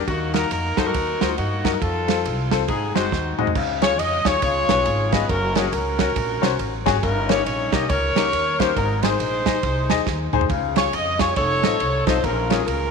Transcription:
0.07 D#2 D#3 A#3 D#4 F#4, kick, ride
0.34 D#4 F#4 A#4, snare, ride
0.51 F2 A#4, ride
0.77 F#2 D#4 F#4 A4 C5, kick, snare, ride
0.87 D#4 F#4 A#4
0.94 D#2, kick, ride
1.20 D2 D#4 F#4 C5, snare, ride
1.29 F4
1.38 G2 A#3 D#4 F#4, ride
1.64 F#2 D#4 F#4 A#4, kick, snare, ride
1.73 A#4
1.81 F2 C4 F4 A4, kick, ride
2.08 C4 F4 A4, snare, ride
2.25 C2, ride
2.51 C4 F4 A4, kick, snare, ride
2.68 G#1 G#2 C4 D#4 G#4, kick, ride
2.95 F#1 G#3 C4 D#4 F#4 C5, snare, ride
3.12 D#2, kick, snare
3.38 D2 G#3 C4 D#4 F#4 D#5, mid tom
3.47 floor tom
3.55 C#2 C#3, kick, crash
3.82 F4 G#4 C#5, snare, ride
3.99 F2 D#5, ride
4.25 D#2 F4 G#4 C#5, kick, snare, ride
4.42 C#2 C#3 F4 G#4 C#5, kick, ride
4.69 B1 B3 C#4 F4 G#4 C#5, snare, ride
4.86 G#1, ride
5.12 B3 C#4 F4 G#4 B4 D#5, kick, snare, ride
5.29 F#1 C#4 F#4 A#4, kick, ride
5.55 C#4 F#4 G#4 A#4, snare, ride
5.72 C#2 C#4 F#4 A#4, ride
5.99 C#4 F#4 A#4, kick, snare, ride
6.16 A#1, kick, ride
6.42 C2 C#4 F#4 C5, snare, ride
6.59 A1, ride
6.86 G#1 C#4 F#4 G#4, kick, snare, ride
7.03 G1 G2 C#4 D#4 A#4, kick, ride
7.29 A#3 C#4 D#4 G4 C#5, snare, ride
7.46 A#1 C#5, ride
7.72 C2 A#3 C#4 D#4 G4 D#5, kick, snare, ride
7.89 C#2 A#4 C#5, kick, ride
8.15 C#2 A#3 C#4 D#4 G4 A#4, snare, ride
8.33 D#2, ride
8.60 A#3 C#4 D#4 G4 C5, kick, snare, ride
8.76 G#1 G#2 D#4 A#4, kick, ride
9.03 D#4 G#4 C5, snare, ride
9.19 A#1, ride
9.46 D#4 G#4 D#5, kick, snare, ride
9.63 C2, kick, ride
9.90 D#2 D#4 G#4 D#5, snare, ride
10.06 D#2, kick, snare
10.33 D2 D#4 G#4 C5, mid tom
10.41 floor tom
10.50 C#2 C#3, kick, ride
10.76 F4 G#4 C#5, snare, ride
10.93 F2 D#5, ride
11.19 F4 G#4 C#5, kick, snare, ride
11.36 F1 A4 C#5, kick, ride
11.63 A1 C4 D#4 F4 A4 D#5, snare, ride
11.80 C2, ride
12.07 B1 C4 D#4 F4 A4 C5 D#5, kick, snare, ride
12.24 A#1 A#2 C#4 F4 A#4, kick, ride
12.50 C#4 F4 G#4 A#4, snare, ride
12.67 C#2 C#4 F4 A#4, ride

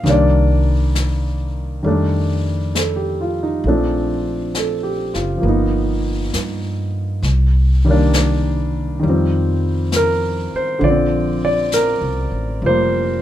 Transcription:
0.04 C2 D#3 G3 A#3, brush sweep, snare
0.09 D4 D5
0.95 snare, hi-hat pedal
1.83 F2 D#3 G3 A3, brush sweep
1.87 D4
2.75 A4, snare, hi-hat pedal
2.96 G4
3.21 F4
3.43 D#4
3.64 A#1 F3 A3 C4, brush sweep
3.68 D4
4.55 A4, snare, hi-hat pedal
4.83 G4
5.14 F#1 F4, snare
5.37 F3 A#3
5.43 G1 B3, brush sweep
5.48 D#4
6.33 G2, snare, hi-hat pedal
7.22 C2, brush sweep, snare
7.85 D#3 G3 A#3
7.91 D4
8.13 snare, hi-hat pedal
9.00 F2 D#3 G3, brush sweep
9.07 F3 C4
9.92 snare, hi-hat pedal
9.96 A#4
10.54 C5, muted upright bass stroke
10.79 A#1 D3 F3, brush sweep
10.84 D5
10.90 C4
11.45 D5
11.72 A#4, snare, hi-hat pedal
12.01 C2
12.31 A1
12.62 F1 F3 G3, brush sweep
12.66 A#3 C5

